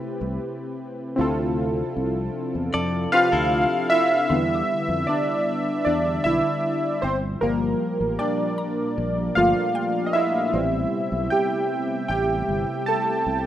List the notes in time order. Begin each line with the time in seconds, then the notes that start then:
Already playing: C3 A3 C4 E4 G4 B4
0.21 C2
1.16 D2 F3 C4 D4 E4 F4
1.21 A4
1.96 C2
2.55 E2
2.74 F2 A4 D5
3.12 C4 D4 F4 G4 B4 F5
3.32 D2 E4 A4
3.90 E4 E5
4.30 E2 D3 G3 B3 E4 B5
4.54 D6
4.89 F2
5.07 D4 D5
5.85 E2 D4 D5
6.24 B1 E4 E5
7.02 G1 A#2 F3 C4 G4 C5
7.41 G1 F3 G3 A#3 A#4
8.00 A1
8.19 D4 D5 G5
8.58 G4 A#5
8.98 A#1
9.35 G1 F3 A3 A#3 F4 F5
9.75 G5
10.06 D#5
10.13 E4 E5
10.53 A1 C3 G3 A3 B3 C4 G4
11.12 B1
11.30 G4 G5
12.08 A1 G4 G5
12.48 G1
12.86 A4 A5
13.26 C2